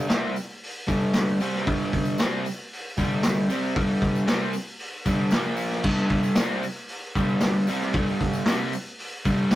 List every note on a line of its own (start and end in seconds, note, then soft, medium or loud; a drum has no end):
0.08 0.34 C3 medium
0.08 0.34 G3 loud
0.08 0.34 C4 loud
0.08 snare loud
0.08 open hi-hat medium
0.08 tambourine medium
0.36 open hi-hat medium
0.36 tambourine medium
0.50 tambourine soft
0.63 open hi-hat medium
0.87 1.39 G2 medium
0.87 1.39 D3 loud
0.87 1.40 G3 loud
0.87 kick medium
0.87 open hi-hat medium
0.87 tambourine medium
1.02 tambourine soft
1.13 snare loud
1.13 open hi-hat medium
1.13 tambourine medium
1.28 tambourine soft
1.40 1.66 C3 medium
1.40 1.66 G3 loud
1.40 1.67 C4 loud
1.40 open hi-hat medium
1.40 tambourine medium
1.54 snare soft
1.54 tambourine soft
1.66 2.18 G2 loud
1.66 2.18 D3 loud
1.66 2.18 G3 loud
1.66 kick loud
1.66 open hi-hat medium
1.66 tambourine soft
1.79 tambourine soft
1.93 kick medium
1.93 open hi-hat medium
2.05 tambourine medium
2.18 2.44 C3 loud
2.18 2.45 G3 loud
2.18 2.45 C4 loud
2.18 snare loud
2.18 open hi-hat medium
2.18 tambourine medium
2.45 open hi-hat medium
2.45 tambourine medium
2.59 tambourine soft
2.73 open hi-hat medium
2.97 3.49 G2 medium
2.97 3.49 D3 medium
2.97 3.49 G3 loud
2.97 kick medium
2.97 open hi-hat medium
2.97 tambourine medium
3.12 tambourine soft
3.23 snare loud
3.23 open hi-hat medium
3.23 tambourine loud
3.50 3.75 C3 medium
3.50 3.75 G3 loud
3.50 3.76 C4 loud
3.50 open hi-hat medium
3.50 tambourine medium
3.65 tambourine soft
3.76 4.28 G2 medium
3.76 4.26 D3 loud
3.76 4.26 G3 loud
3.76 kick loud
3.76 open hi-hat medium
3.76 tambourine soft
4.01 kick medium
4.01 open hi-hat medium
4.01 tambourine soft
4.15 tambourine medium
4.27 4.53 C3 loud
4.27 4.53 G3 loud
4.27 4.54 C4 loud
4.27 snare loud
4.27 open hi-hat medium
4.27 tambourine medium
4.41 tambourine soft
4.53 open hi-hat medium
4.53 tambourine medium
4.79 open hi-hat medium
4.79 tambourine soft
4.93 tambourine soft
5.05 5.32 G2 medium
5.05 5.32 D3 loud
5.05 5.32 G3 loud
5.05 kick medium
5.05 open hi-hat medium
5.05 tambourine medium
5.19 tambourine soft
5.31 5.84 A#2 loud
5.31 5.84 F3 loud
5.31 5.85 A#3 loud
5.31 snare loud
5.31 open hi-hat medium
5.31 tambourine medium
5.44 tambourine soft
5.57 open hi-hat medium
5.57 tambourine medium
5.70 snare soft
5.70 tambourine soft
5.83 6.36 G2 loud
5.83 6.37 D3 loud
5.83 6.37 G3 loud
5.83 kick loud
5.83 crash loud
5.83 tambourine soft
5.97 snare soft
5.97 tambourine soft
6.09 kick medium
6.09 open hi-hat medium
6.23 tambourine medium
6.35 6.63 C3 medium
6.35 6.64 G3 medium
6.35 6.64 C4 loud
6.35 snare loud
6.35 open hi-hat medium
6.35 tambourine loud
6.63 open hi-hat medium
6.63 tambourine medium
6.77 tambourine soft
6.88 open hi-hat medium
7.15 7.68 G2 medium
7.15 7.67 D3 medium
7.15 7.67 G3 loud
7.15 kick medium
7.15 open hi-hat medium
7.15 tambourine medium
7.28 tambourine soft
7.41 snare loud
7.41 open hi-hat medium
7.41 tambourine loud
7.54 tambourine soft
7.67 7.94 C3 medium
7.67 7.94 G3 loud
7.67 7.94 C4 loud
7.67 open hi-hat medium
7.67 tambourine medium
7.80 snare soft
7.80 tambourine soft
7.92 8.46 G2 loud
7.92 8.46 D3 loud
7.92 kick loud
7.92 open hi-hat medium
7.92 tambourine soft
7.97 8.47 G3 loud
8.08 tambourine soft
8.20 kick medium
8.20 open hi-hat medium
8.33 tambourine medium
8.46 8.72 C3 loud
8.46 8.73 G3 loud
8.46 8.73 C4 loud
8.46 snare loud
8.46 open hi-hat medium
8.46 tambourine medium
8.72 open hi-hat medium
8.72 tambourine medium
8.85 tambourine soft
8.99 open hi-hat medium
9.25 9.55 G2 loud
9.25 9.55 D3 loud
9.25 9.55 G3 loud
9.25 kick medium
9.25 open hi-hat medium
9.25 tambourine medium
9.51 snare loud
9.51 open hi-hat medium
9.51 tambourine loud